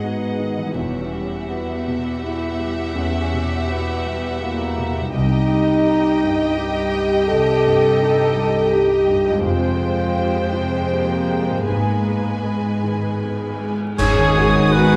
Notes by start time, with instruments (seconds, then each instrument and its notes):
Already playing: grand piano G#2 D#3 G#3 D#4 F#4, cello section G#2, viola section G#4, violin section D#5 F#5
0.03 french horn section B3, grand piano D#4 F#4
0.39 grand piano D#3
0.57 harp E3
0.62 harp G3
0.67 harp E4
0.71 french horn section C#4, harp F#4
0.75 double bass section E1, grand piano E2, cello section E2, viola section G4, violin section E5 F#5
1.13 grand piano G3
1.48 french horn section B3, grand piano E4 F#4
1.87 grand piano B2
2.24 french horn section E4, grand piano E4 F#4
2.59 grand piano G3
2.95 grand piano E2, french horn section C#4
3.33 grand piano B2
3.69 french horn section B3, grand piano E4 F#4
4.05 grand piano G3
4.42 french horn section A#3, grand piano E4 F#4
4.78 grand piano B2
4.96 harp C3
5.01 harp G3
5.05 harp D#4
5.10 harp G4
5.14 double bass section C2, cello section C2, grand piano C2, french horn section D#4, viola section G4, violin section D#5 G5
5.52 grand piano G3
5.87 grand piano D#4 G4
6.24 grand piano G2
6.57 grand piano D#4 G4, french horn section G4
6.94 grand piano G3
7.28 grand piano C2, french horn section A4
7.65 grand piano G2
8.01 grand piano D#4 G4
8.36 grand piano G3
8.72 grand piano D#4 G4, french horn section G4
9.08 grand piano G2
9.26 harp F2
9.30 harp G#3
9.35 harp C4
9.39 harp G4
9.43 double bass section F1, grand piano F2, cello section F2, viola section G#3, french horn section F4, violin section C5 G5
9.81 grand piano G#3
10.17 grand piano C4 G4
10.53 grand piano C3, french horn section C4
10.91 french horn section A#3, grand piano C4 G4
11.29 grand piano G#3
11.49 harp G#2
11.53 harp G#3
11.58 harp B3
11.62 harp G#4
11.67 double bass section G#1, grand piano G#2, cello section G#2, french horn section A#3, violin section B4 G#5
12.06 grand piano G#3
12.44 french horn section G#3, grand piano B3 G#4
12.83 grand piano D#3
13.22 grand piano B3 G#4
13.61 grand piano G#3
13.98 double bass section G#1, harp G#2, grand piano G#2, cello section G#2, french horn section C#4, viola section G#4, violin section G#4 G#5 D#6, cor anglais C#5, clarinet C#5, concert bass drum, crash
14.18 harp D#3
14.37 harp G#3, grand piano G#3, violin section F#4
14.54 harp D#4
14.73 french horn section B3, grand piano D#4 F#4, viola section F#4, violin section G#4 G#5, cor anglais B4, clarinet B4
14.92 harp G#4